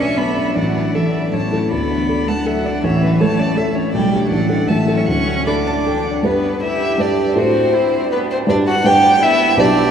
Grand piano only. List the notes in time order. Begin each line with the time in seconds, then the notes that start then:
Already playing: B1 D5
0.00 D4
0.18 D5
0.37 D4
0.56 A1
0.76 D4
0.95 A4
1.14 D4
1.33 A1
1.52 E4 A4
1.72 D2
1.91 D4
2.09 A4
2.28 D4
2.46 A4
2.65 D4
2.84 A1
3.02 C#4
3.21 A4
3.39 C#4
3.57 A4
3.76 C#4
3.94 B1
4.12 D4 G4
4.31 A1
4.49 D4 A4
4.68 A1
4.87 E4 A4
5.08 D2
5.28 D4
5.47 A4
5.67 D4
5.87 A4
6.07 D4
6.23 G2 D4 G4 B4
6.98 G2 D4 G4 B4
7.35 A2 D4 F#4 A4
8.47 G2 D4 G4 B4
8.84 G2 D4 G4 B4
9.57 B1 B3 G4 B4